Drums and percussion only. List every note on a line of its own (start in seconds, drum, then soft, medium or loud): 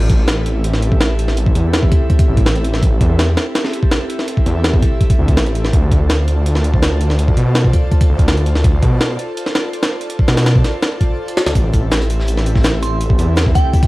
0.10 kick medium
0.10 closed hi-hat medium
0.28 snare loud
0.28 closed hi-hat medium
0.46 closed hi-hat medium
0.64 closed hi-hat medium
0.74 snare medium
0.82 closed hi-hat medium
0.92 kick medium
1.01 snare loud
1.01 closed hi-hat medium
1.19 closed hi-hat medium
1.28 snare soft
1.37 closed hi-hat medium
1.46 kick loud
1.55 closed hi-hat medium
1.73 snare loud
1.73 closed hi-hat medium
1.83 kick loud
1.92 kick loud
1.92 closed hi-hat medium
2.10 kick medium
2.10 closed hi-hat medium
2.19 kick loud
2.19 closed hi-hat medium
2.37 kick medium
2.37 closed hi-hat medium
2.46 snare loud
2.46 closed hi-hat medium
2.56 closed hi-hat soft
2.64 closed hi-hat medium
2.74 snare medium
2.83 kick loud
2.83 closed hi-hat medium
3.01 kick loud
3.01 closed hi-hat medium
3.19 snare loud
3.19 closed hi-hat medium
3.37 snare loud
3.37 closed hi-hat medium
3.55 snare loud
3.55 closed hi-hat medium
3.64 snare medium
3.73 closed hi-hat medium
3.83 kick medium
3.91 snare loud
3.91 closed hi-hat medium
4.10 closed hi-hat medium
4.19 snare soft
4.28 closed hi-hat medium
4.37 kick medium
4.46 closed hi-hat medium
4.64 snare loud
4.64 closed hi-hat medium
4.74 kick loud
4.82 kick loud
4.82 closed hi-hat medium
5.01 kick medium
5.01 closed hi-hat medium
5.10 kick loud
5.10 closed hi-hat medium
5.28 kick medium
5.28 closed hi-hat medium
5.37 snare loud
5.37 closed hi-hat medium
5.46 closed hi-hat soft
5.55 closed hi-hat medium
5.65 snare medium
5.73 kick loud
5.73 closed hi-hat medium
5.92 kick medium
5.92 closed hi-hat medium
6.10 snare loud
6.10 closed hi-hat medium
6.28 closed hi-hat medium
6.46 closed hi-hat medium
6.55 snare medium
6.64 closed hi-hat medium
6.74 kick loud
6.82 snare loud
6.82 closed hi-hat medium
7.01 closed hi-hat medium
7.10 snare soft
7.19 closed hi-hat medium
7.28 kick loud
7.37 closed hi-hat medium
7.55 snare loud
7.55 closed hi-hat medium
7.64 kick loud
7.73 kick loud
7.73 closed hi-hat medium
7.92 kick medium
7.92 closed hi-hat medium
8.01 kick loud
8.01 closed hi-hat medium
8.19 kick medium
8.19 closed hi-hat medium
8.28 snare loud
8.28 closed hi-hat medium
8.37 closed hi-hat soft
8.46 closed hi-hat medium
8.55 snare medium
8.64 kick loud
8.64 closed hi-hat medium
8.83 kick loud
8.83 closed hi-hat medium
9.01 snare loud
9.01 closed hi-hat medium
9.19 closed hi-hat medium
9.37 closed hi-hat medium
9.46 snare medium
9.55 snare loud
9.55 closed hi-hat medium
9.73 closed hi-hat medium
9.83 snare loud
9.83 closed hi-hat medium
10.01 closed hi-hat medium
10.10 closed hi-hat medium
10.19 kick loud
10.28 snare loud
10.28 closed hi-hat medium
10.37 snare loud
10.37 closed hi-hat medium
10.46 snare loud
10.46 closed hi-hat medium
10.55 kick loud
10.64 snare medium
10.64 closed hi-hat medium
10.82 snare loud
10.82 closed hi-hat medium
11.01 kick medium
11.01 closed hi-hat medium
11.28 closed hi-hat medium
11.37 snare loud
11.37 closed hi-hat medium
11.46 snare loud
11.46 closed hi-hat medium
11.55 kick loud
11.55 closed hi-hat medium
11.55 shaker medium
11.74 kick loud
11.74 closed hi-hat medium
11.74 shaker medium
11.91 snare loud
11.91 closed hi-hat medium
11.91 shaker medium
12.02 closed hi-hat soft
12.10 closed hi-hat medium
12.10 shaker medium
12.20 snare medium
12.28 closed hi-hat medium
12.28 shaker medium
12.37 snare soft
12.46 closed hi-hat medium
12.46 shaker medium
12.55 kick loud
12.55 snare soft
12.64 snare loud
12.64 closed hi-hat medium
12.64 shaker medium
12.83 closed hi-hat medium
12.83 shaker medium
13.01 closed hi-hat medium
13.01 shaker medium
13.10 kick loud
13.19 closed hi-hat medium
13.19 shaker medium
13.37 snare loud
13.37 closed hi-hat medium
13.37 shaker medium
13.46 kick loud
13.55 kick loud
13.55 closed hi-hat medium
13.55 shaker medium
13.73 kick medium
13.73 closed hi-hat medium
13.73 shaker medium
13.83 kick loud
13.83 closed hi-hat medium